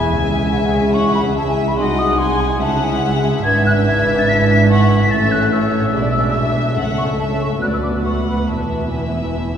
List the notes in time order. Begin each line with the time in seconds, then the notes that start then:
Already playing: E1 E2 G#3 E4 G#4 E5 G#5 B5
0.11 C#2 C#4
0.32 G#5
0.52 F#5
0.64 F#5
0.74 G#5
0.94 F#5 C#6
1.15 B5
1.37 E5 A5
1.48 G#5
1.68 B5
1.78 C2 D#4 F#4 D#5 F#5 C6
1.99 D#6
2.19 G#5 C6
2.41 G#5
2.61 C#2 G#3 C#4 E4 G#4 E5 F#5 A5
2.84 G#5
3.03 F#5
3.14 G#5
3.23 G#5
3.45 G#1 G#2 E3 D4 B4 E5 G#6
3.66 F#6
3.87 G#6
4.19 A6
4.29 B6
4.49 B6
4.70 F#5 C#6
5.02 B6
5.10 A1 A2 C#4 A4 E5 A6
5.32 F#6
5.52 C#5 E6
5.94 B1 B2 G#3 D4 G#4 D5 E5
6.34 E5
6.78 C#2 A3 C#4 A4 F#5
6.98 C#6
7.20 A3 C#4 E5 A5
7.31 A5
7.41 C#6
7.62 D2 F#3 B3 F#4 B4 D5 F#6
7.73 E6
7.83 D6
8.05 F#5 C#6
8.27 B5
8.48 E1 E2 E3 B3 E4 E5 A5
8.91 E3 B3 G#5